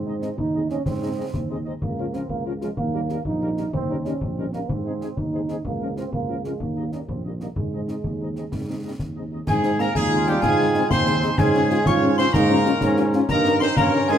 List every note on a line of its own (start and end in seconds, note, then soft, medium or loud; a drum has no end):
0.00 0.30 G#2 medium
0.00 0.35 C4 medium
0.06 0.12 G#3 medium
0.06 0.12 C4 soft
0.06 0.12 D#4 medium
0.06 0.11 D#5 soft
0.21 0.28 G#3 soft
0.21 0.28 C4 medium
0.21 0.28 D#4 soft
0.21 0.27 D#5 soft
0.21 snare soft
0.38 0.78 D#2 medium
0.38 0.68 D#4 medium
0.38 concert bass drum medium
0.54 0.60 G#3 soft
0.54 0.60 C4 soft
0.54 0.60 D#4 soft
0.54 0.60 D#5 medium
0.69 0.76 G#3 soft
0.69 0.76 C4 medium
0.69 0.85 C#4 medium
0.69 0.76 D#4 soft
0.69 0.75 D#5 soft
0.69 snare soft
0.86 1.26 G#2 medium
0.86 1.62 C4 medium
0.86 concert bass drum medium
0.86 snare medium
1.01 1.08 G#3 medium
1.01 1.08 C4 medium
1.01 1.08 D#4 medium
1.01 1.07 D#5 soft
1.17 1.24 G#3 medium
1.17 1.24 C4 medium
1.17 1.24 D#4 medium
1.17 1.23 D#5 medium
1.34 1.74 D#2 medium
1.34 concert bass drum medium
1.34 snare soft
1.50 1.56 G#3 medium
1.50 1.56 C4 medium
1.50 1.56 D#4 medium
1.50 1.56 D#5 soft
1.65 1.72 G#3 medium
1.65 1.72 C4 medium
1.65 1.72 D#4 medium
1.65 1.71 D#5 medium
1.82 2.22 C#2 medium
1.82 2.16 A#3 medium
1.82 concert bass drum medium
1.97 2.04 F3 medium
1.97 2.04 C#4 medium
1.97 2.04 F4 medium
1.97 2.03 A#4 soft
2.13 2.20 F3 medium
2.13 2.29 C4 medium
2.13 2.20 C#4 medium
2.13 2.20 F4 medium
2.13 2.19 A#4 medium
2.13 snare soft
2.29 2.70 C#2 medium
2.29 2.44 A#3 medium
2.29 concert bass drum medium
2.46 2.51 F3 medium
2.46 2.51 C#4 medium
2.46 2.51 F4 medium
2.46 2.51 A#4 medium
2.61 2.67 F3 soft
2.61 2.69 G#3 medium
2.61 2.67 C#4 soft
2.61 2.67 F4 medium
2.61 2.67 A#4 medium
2.61 snare soft
2.77 3.18 D#2 medium
2.77 3.22 A#3 medium
2.77 concert bass drum medium
2.93 2.99 G3 medium
2.93 2.99 A#3 medium
2.93 2.99 D#4 medium
2.93 2.99 A#4 medium
3.09 3.15 G3 medium
3.09 3.15 A#3 soft
3.09 3.16 D#4 medium
3.09 3.15 A#4 medium
3.09 snare soft
3.25 3.66 A#1 medium
3.25 3.70 D#4 medium
3.25 concert bass drum medium
3.41 3.48 G3 medium
3.41 3.48 A#3 medium
3.41 3.48 D#4 medium
3.41 3.47 A#4 medium
3.57 3.63 G3 soft
3.57 3.63 A#3 soft
3.57 3.63 D#4 medium
3.57 3.63 A#4 medium
3.57 snare soft
3.73 4.13 D#2 medium
3.73 4.07 C4 medium
3.73 concert bass drum medium
3.89 3.95 G3 medium
3.89 3.95 C#4 medium
3.89 3.95 D#4 medium
3.89 3.95 A#4 soft
4.05 4.11 G3 medium
4.05 4.23 C#4 medium
4.05 4.11 C#4 soft
4.05 4.11 D#4 medium
4.05 4.11 A#4 medium
4.05 snare soft
4.21 4.62 A#1 medium
4.21 4.53 C4 medium
4.21 concert bass drum medium
4.37 4.43 G3 medium
4.37 4.43 C#4 medium
4.37 4.43 D#4 medium
4.37 4.43 A#4 medium
4.53 4.59 G3 soft
4.53 4.71 A#3 medium
4.53 4.59 C#4 soft
4.53 4.59 D#4 soft
4.53 4.59 A#4 soft
4.53 snare soft
4.69 5.10 G#2 medium
4.69 5.19 C4 medium
4.69 concert bass drum medium
4.85 4.91 G#3 medium
4.85 4.91 C4 medium
4.85 4.91 D#4 medium
4.85 4.91 G#4 soft
5.01 5.07 G#3 medium
5.01 5.07 C4 medium
5.01 5.07 D#4 medium
5.01 5.06 G#4 medium
5.01 snare soft
5.17 5.57 D#2 medium
5.17 5.65 D#4 medium
5.17 concert bass drum medium
5.32 5.39 G#3 soft
5.32 5.39 C4 soft
5.32 5.39 D#4 medium
5.32 5.38 G#4 medium
5.49 5.55 G#3 soft
5.49 5.55 C4 soft
5.49 5.55 D#4 soft
5.49 5.55 G#4 medium
5.49 snare soft
5.65 6.05 C#2 medium
5.65 5.95 A#3 medium
5.65 concert bass drum medium
5.80 5.87 F3 medium
5.80 5.87 C#4 soft
5.80 5.87 F4 soft
5.80 5.86 A#4 soft
5.96 6.03 F3 medium
5.96 6.12 C4 medium
5.96 6.03 C#4 soft
5.96 6.03 F4 soft
5.96 6.02 A#4 soft
5.96 snare soft
6.12 6.53 C#2 medium
6.12 6.43 A#3 medium
6.12 concert bass drum medium
6.29 6.35 F3 soft
6.29 6.35 C#4 soft
6.29 6.35 F4 soft
6.29 6.35 A#4 soft
6.44 6.51 F3 soft
6.44 6.62 G#3 medium
6.44 6.51 C#4 soft
6.44 6.51 F4 soft
6.44 6.51 A#4 soft
6.44 snare soft
6.60 7.01 D#2 medium
6.60 6.92 A#3 medium
6.60 concert bass drum medium
6.76 6.83 G3 soft
6.76 6.83 A#3 soft
6.76 6.83 D#4 soft
6.76 6.82 D#5 soft
6.92 6.99 G3 soft
6.92 6.99 A#3 soft
6.92 7.00 C#4 medium
6.92 6.99 D#4 soft
6.92 6.98 D#5 soft
6.92 snare soft
7.08 7.49 A#1 medium
7.08 7.23 C4 medium
7.08 concert bass drum medium
7.25 7.31 G3 soft
7.25 7.31 A#3 soft
7.25 7.31 D#4 soft
7.25 7.30 D#5 soft
7.40 7.47 G3 soft
7.40 7.48 A#3 medium
7.40 7.47 A#3 soft
7.40 7.47 D#4 soft
7.40 7.46 D#5 soft
7.40 snare soft
7.56 7.97 G#2 soft
7.56 8.96 G#3 medium
7.56 concert bass drum medium
7.73 7.79 G#3 soft
7.73 7.79 C4 soft
7.73 7.79 D#4 soft
7.73 7.79 D#5 soft
7.88 7.94 G#3 soft
7.88 7.94 C4 soft
7.88 7.94 D#4 soft
7.88 7.94 D#5 soft
7.88 snare soft
8.04 8.44 D#2 medium
8.04 concert bass drum medium
8.21 8.27 G#3 soft
8.21 8.27 C4 soft
8.21 8.27 D#4 soft
8.21 8.26 D#5 soft
8.36 8.42 G#3 soft
8.36 8.42 C4 soft
8.36 8.42 D#4 soft
8.36 8.42 D#5 soft
8.36 snare soft
8.52 8.92 G#2 soft
8.52 concert bass drum medium
8.52 snare medium
8.68 8.74 G#3 soft
8.68 8.74 C4 soft
8.68 8.74 D#4 soft
8.68 8.74 D#5 soft
8.84 8.90 G#3 soft
8.84 8.90 C4 soft
8.84 8.90 D#4 soft
8.84 8.90 D#5 soft
8.99 9.40 D#2 medium
8.99 concert bass drum medium
8.99 snare soft
9.15 9.22 G#3 soft
9.15 9.22 C4 soft
9.15 9.22 D#4 soft
9.15 9.21 D#5 soft
9.31 9.38 G#3 soft
9.31 9.38 C4 soft
9.31 9.38 D#4 soft
9.31 9.37 D#5 soft
9.46 9.88 G#2 medium
9.46 9.77 G#3 loud
9.46 9.77 G#4 loud
9.46 9.54 G#5 loud
9.46 9.78 G#5 medium
9.46 concert bass drum medium
9.46 snare medium
9.46 crash medium
9.63 9.69 G#3 medium
9.63 9.69 C4 medium
9.63 9.69 D#4 medium
9.63 snare medium
9.78 9.86 G#3 medium
9.78 9.97 A#3 loud
9.78 9.86 C4 medium
9.78 9.86 D#4 medium
9.78 9.95 A#4 loud
9.78 9.94 A#5 medium
9.78 9.94 A#5 loud
9.78 snare medium
9.95 10.35 D#2 medium
9.95 10.29 G#3 loud
9.95 10.87 F4 loud
9.95 10.25 G#4 loud
9.95 10.02 G#5 medium
9.95 10.25 G#5 loud
9.95 concert bass drum medium
9.95 snare medium
10.12 10.17 G#3 medium
10.12 10.18 C4 medium
10.12 10.17 D#4 medium
10.27 10.45 G3 loud
10.27 10.33 G#3 medium
10.27 10.33 C4 medium
10.27 10.33 D#4 medium
10.27 10.43 G4 loud
10.27 10.33 G5 medium
10.27 10.42 G5 medium
10.27 snare medium
10.42 10.83 G#2 loud
10.42 10.92 G#3 loud
10.42 10.87 G#4 loud
10.42 10.87 G#5 loud
10.42 10.88 G#5 loud
10.42 concert bass drum medium
10.42 snare medium
10.59 10.65 G#3 medium
10.59 10.65 C4 medium
10.59 10.65 D#4 medium
10.74 10.81 G#3 medium
10.74 10.81 C4 medium
10.74 10.81 D#4 medium
10.74 snare medium
10.90 11.31 D#2 medium
10.90 11.38 C4 loud
10.90 11.38 D#4 medium
10.90 11.35 C5 loud
10.90 11.40 C6 loud
10.90 11.35 C6 loud
10.90 concert bass drum medium
10.90 snare medium
11.06 11.13 G#3 medium
11.06 11.13 C4 medium
11.06 11.13 D#4 medium
11.06 snare medium
11.22 11.29 G#3 medium
11.22 11.29 C4 medium
11.22 11.29 D#4 medium
11.22 snare medium
11.38 11.79 G#2 loud
11.38 11.88 G#3 loud
11.38 11.83 C#4 loud
11.38 11.86 G#4 loud
11.38 11.86 G#5 loud
11.38 11.83 G#5 loud
11.38 concert bass drum loud
11.38 snare medium
11.38 crash soft
11.54 11.60 C#4 medium
11.54 11.61 F4 medium
11.54 snare medium
11.70 11.76 C#4 medium
11.70 11.76 F4 medium
11.70 snare medium
11.86 12.26 G#2 loud
11.86 12.18 C#4 loud
11.86 12.30 F4 loud
11.86 12.18 C#5 loud
11.86 11.93 C#6 loud
11.86 12.16 C#6 loud
11.86 concert bass drum medium
11.86 snare medium
12.02 12.08 C#4 medium
12.02 12.08 F4 medium
12.17 12.33 C4 loud
12.17 12.24 C#4 medium
12.17 12.24 F4 medium
12.17 12.32 C5 loud
12.17 12.35 C6 loud
12.17 12.33 C6 loud
12.17 snare medium
12.33 12.74 G#2 loud
12.33 13.10 A#3 loud
12.33 12.78 D#4 loud
12.33 13.09 A#4 loud
12.33 13.13 A#5 loud
12.33 13.10 A#5 loud
12.33 concert bass drum medium
12.33 snare medium
12.50 12.56 C#4 medium
12.50 12.56 F4 medium
12.65 12.72 C#4 medium
12.65 12.71 F4 medium
12.65 snare medium
12.81 13.21 G#2 loud
12.81 13.26 C#4 loud
12.81 concert bass drum medium
12.81 snare medium
12.97 13.04 C#4 medium
12.97 13.03 F4 medium
12.97 snare medium
13.13 13.20 C#4 medium
13.13 13.20 F4 medium
13.13 snare medium
13.29 13.69 G2 loud
13.29 13.63 A#3 loud
13.29 13.77 D#4 loud
13.29 13.59 A#4 loud
13.29 13.59 A#5 loud
13.29 concert bass drum medium
13.29 snare medium
13.29 crash soft
13.45 13.51 C#4 medium
13.45 13.51 D#4 medium
13.45 13.51 A#4 medium
13.45 snare medium
13.60 13.77 C4 loud
13.60 13.67 C#4 medium
13.60 13.67 D#4 medium
13.60 13.67 A#4 medium
13.60 13.76 C5 loud
13.60 13.75 C6 loud
13.60 13.66 C6 loud
13.60 snare medium
13.77 14.17 G2 loud
13.77 13.91 A#3 loud
13.77 14.18 C#4 loud
13.77 14.09 A#4 loud
13.77 13.84 A#5 loud
13.77 14.07 A#5 loud
13.77 concert bass drum medium
13.77 snare medium
13.94 13.99 C#4 medium
13.94 13.99 D#4 medium
13.94 13.99 A#4 medium
14.08 14.16 G#3 loud
14.08 14.15 C#4 medium
14.08 14.15 D#4 medium
14.08 14.18 G#4 loud
14.08 14.15 A#4 medium
14.08 14.18 G#5 loud
14.08 snare medium